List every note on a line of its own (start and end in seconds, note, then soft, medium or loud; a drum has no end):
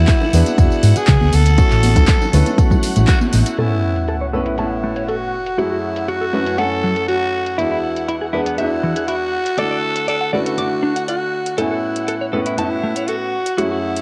0.00 0.30 G#3 medium
0.00 0.30 B3 medium
0.00 0.31 D4 medium
0.00 0.58 E4 loud
0.00 0.31 F#4 medium
0.00 3.57 F#5 medium
0.07 kick loud
0.07 clap loud
0.07 closed hi-hat medium
0.07 tambourine medium
0.07 tambourine soft
0.21 tambourine soft
0.21 high bongo medium
0.33 0.41 E2 medium
0.33 0.55 G#3 medium
0.33 0.55 B3 medium
0.33 0.56 D4 medium
0.33 0.56 B4 loud
0.33 open hi-hat medium
0.33 tambourine medium
0.33 tambourine loud
0.45 closed hi-hat medium
0.45 tambourine soft
0.45 high conga medium
0.47 tambourine soft
0.57 0.66 E1 medium
0.57 1.31 G#3 medium
0.57 1.32 B3 medium
0.57 1.32 D4 medium
0.57 0.99 E4 medium
0.57 1.32 F#4 medium
0.57 kick loud
0.57 closed hi-hat medium
0.57 tambourine medium
0.57 tambourine soft
0.71 tambourine soft
0.83 0.91 G#2 medium
0.83 open hi-hat medium
0.83 tambourine medium
0.96 1.36 G#4 loud
0.96 closed hi-hat medium
0.96 tambourine soft
1.07 1.16 C#3 medium
1.07 kick loud
1.07 clap loud
1.07 closed hi-hat medium
1.07 tambourine soft
1.21 1.29 D2 medium
1.21 tambourine soft
1.21 high conga medium
1.33 1.58 D2 medium
1.33 2.91 A4 loud
1.33 open hi-hat medium
1.33 tambourine medium
1.46 closed hi-hat medium
1.46 tambourine soft
1.57 2.30 A3 medium
1.57 2.30 C#4 medium
1.57 2.31 E4 medium
1.57 2.31 F#4 medium
1.57 muted fingered electric bass stroke soft
1.57 kick loud
1.57 closed hi-hat medium
1.57 tambourine soft
1.70 1.96 A1 medium
1.70 clap soft
1.70 tambourine soft
1.83 open hi-hat loud
1.83 tambourine medium
1.83 high conga medium
1.96 2.04 D2 loud
1.96 kick medium
1.96 closed hi-hat medium
1.96 tambourine soft
1.96 low conga medium
2.08 kick loud
2.08 clap loud
2.08 closed hi-hat medium
2.08 tambourine soft
2.21 tambourine soft
2.21 high bongo medium
2.33 2.41 D2 medium
2.33 2.55 A3 medium
2.33 2.55 C#4 medium
2.33 2.56 E4 medium
2.33 2.56 B4 loud
2.33 open hi-hat medium
2.33 tambourine medium
2.33 tambourine loud
2.46 closed hi-hat medium
2.46 tambourine soft
2.46 high bongo medium
2.46 high conga medium
2.58 2.94 A3 medium
2.58 2.94 C#4 medium
2.58 2.94 E4 medium
2.58 2.94 F#4 medium
2.58 kick loud
2.58 closed hi-hat medium
2.58 tambourine soft
2.70 kick medium
2.70 tambourine soft
2.70 low conga medium
2.83 open hi-hat loud
2.83 tambourine medium
2.96 3.04 A1 medium
2.96 3.55 A3 medium
2.96 3.56 C#4 medium
2.96 3.56 E4 medium
2.96 3.56 F#4 medium
2.96 closed hi-hat medium
2.96 tambourine soft
3.07 3.19 F#4 loud
3.07 kick loud
3.07 clap loud
3.07 closed hi-hat medium
3.07 tambourine soft
3.07 tambourine medium
3.21 tambourine soft
3.21 high conga loud
3.33 3.41 A1 medium
3.33 4.29 E4 loud
3.33 open hi-hat medium
3.33 tambourine medium
3.33 tambourine loud
3.46 closed hi-hat medium
3.46 tambourine soft
3.58 4.30 A2 medium
3.58 4.30 B3 medium
3.58 4.31 C#4 medium
3.58 4.31 E4 medium
3.58 3.68 A4 medium
3.58 11.57 F#5 medium
3.58 4.31 G#5 medium
3.58 closed hi-hat soft
3.58 sub drop medium
3.71 3.77 A4 medium
3.96 closed hi-hat medium
4.08 4.15 A4 medium
4.08 closed hi-hat soft
4.21 4.25 C#5 medium
4.33 4.55 A2 medium
4.33 4.55 B3 medium
4.33 4.56 C#4 medium
4.33 4.56 E4 medium
4.33 4.40 A4 medium
4.33 4.56 B4 medium
4.46 4.55 E4 medium
4.46 closed hi-hat medium
4.58 5.32 A2 medium
4.58 5.32 B3 medium
4.58 5.32 C#4 medium
4.58 5.10 E4 medium
4.58 5.32 E4 medium
4.58 4.68 A5 medium
4.58 closed hi-hat soft
4.84 4.93 A3 medium
4.96 5.02 C#5 medium
4.96 closed hi-hat medium
5.08 5.60 F#4 medium
5.08 5.15 A4 medium
5.08 closed hi-hat soft
5.46 closed hi-hat medium
5.57 6.30 F#2 medium
5.57 6.30 A3 medium
5.57 6.30 C#4 medium
5.57 6.10 E4 medium
5.57 6.31 E4 medium
5.57 5.68 F#4 medium
5.57 6.31 G#4 medium
5.57 closed hi-hat soft
5.71 5.77 F#4 medium
5.96 closed hi-hat medium
6.08 6.15 F#4 medium
6.08 6.60 F#4 medium
6.08 closed hi-hat soft
6.21 6.25 A4 medium
6.33 6.55 F#2 medium
6.33 6.55 A3 medium
6.33 6.55 C#4 medium
6.33 6.56 E4 medium
6.33 6.40 F#4 medium
6.33 6.56 B4 medium
6.46 6.55 C#4 medium
6.46 closed hi-hat medium
6.57 7.55 F#2 medium
6.57 7.55 A3 medium
6.57 7.55 C#4 medium
6.57 7.56 E4 medium
6.57 7.07 A4 loud
6.57 6.68 F#5 medium
6.57 7.56 G#5 medium
6.57 closed hi-hat soft
6.84 6.93 F#3 medium
6.96 7.03 A4 medium
6.96 closed hi-hat medium
7.08 7.60 F#4 medium
7.08 7.15 F#4 medium
7.08 closed hi-hat soft
7.46 closed hi-hat medium
7.57 8.30 E2 medium
7.57 8.30 G#3 medium
7.57 8.30 B3 medium
7.57 8.31 D4 medium
7.57 7.68 E4 medium
7.57 8.33 E4 medium
7.57 8.31 F#4 medium
7.57 closed hi-hat soft
7.71 7.77 E4 medium
7.96 closed hi-hat medium
8.08 8.15 E4 medium
8.08 closed hi-hat soft
8.21 8.25 G#4 medium
8.33 8.55 E2 medium
8.33 8.55 G#3 medium
8.33 8.55 B3 medium
8.33 8.56 D4 medium
8.33 8.40 E4 medium
8.33 8.56 B4 medium
8.46 8.55 B3 medium
8.46 closed hi-hat medium
8.57 9.31 E2 medium
8.57 9.32 G#3 medium
8.57 9.32 B3 medium
8.57 9.32 D4 medium
8.57 9.10 E4 medium
8.57 9.32 F#4 medium
8.57 8.68 E5 medium
8.57 closed hi-hat soft
8.83 8.93 E3 medium
8.96 9.02 G#4 medium
8.96 closed hi-hat medium
9.08 9.15 E4 medium
9.08 9.60 F#4 medium
9.08 closed hi-hat soft
9.46 closed hi-hat medium
9.57 10.30 D3 medium
9.57 10.30 A3 medium
9.57 10.31 E4 medium
9.57 10.31 F#4 medium
9.57 10.08 A4 loud
9.57 9.68 D5 medium
9.57 closed hi-hat soft
9.71 9.77 D5 medium
9.96 closed hi-hat medium
10.08 10.32 A4 loud
10.08 10.15 D5 medium
10.08 closed hi-hat soft
10.21 10.25 F#5 medium
10.33 10.55 D3 medium
10.33 10.55 A3 medium
10.33 10.55 C#4 medium
10.33 10.56 E4 medium
10.33 11.05 F#4 medium
10.33 10.56 B4 medium
10.33 10.40 D5 medium
10.46 10.55 A4 medium
10.46 closed hi-hat medium
10.57 11.55 D3 medium
10.57 11.55 A3 medium
10.57 11.56 E4 medium
10.57 11.56 F#4 medium
10.57 10.68 D6 medium
10.57 closed hi-hat soft
10.83 10.93 D4 medium
10.96 11.02 F#5 medium
10.96 closed hi-hat soft
11.08 11.60 F#4 medium
11.08 11.15 D5 medium
11.08 closed hi-hat soft
11.46 closed hi-hat medium
11.57 12.30 A2 medium
11.57 12.30 B3 medium
11.57 12.30 C#4 medium
11.57 12.31 E4 medium
11.57 12.33 E4 medium
11.57 11.68 A4 loud
11.57 14.02 F#5 medium
11.57 12.31 G#5 medium
11.57 closed hi-hat soft
11.71 11.77 A4 medium
11.96 closed hi-hat medium
12.08 12.15 A4 medium
12.08 closed hi-hat soft
12.21 12.25 C#5 medium
12.33 12.55 A2 medium
12.33 12.55 B3 medium
12.33 12.55 C#4 medium
12.33 12.55 E4 medium
12.33 12.40 A4 medium
12.33 12.56 B4 medium
12.46 12.55 E4 medium
12.46 closed hi-hat soft
12.57 13.31 A2 medium
12.57 13.31 B3 medium
12.57 13.32 C#4 medium
12.57 13.09 E4 medium
12.57 13.32 E4 medium
12.57 12.68 A5 medium
12.57 closed hi-hat soft
12.83 12.93 A3 medium
12.96 13.02 C#5 medium
12.96 closed hi-hat medium
13.08 13.59 F#4 medium
13.08 13.15 A4 medium
13.08 closed hi-hat soft
13.46 closed hi-hat medium
13.57 14.02 F#2 medium
13.57 14.02 A3 medium
13.57 14.02 C#4 medium
13.57 14.02 E4 medium
13.57 13.68 F#4 medium
13.57 14.02 G#4 medium
13.57 closed hi-hat soft
13.71 13.77 F#4 medium
13.96 closed hi-hat medium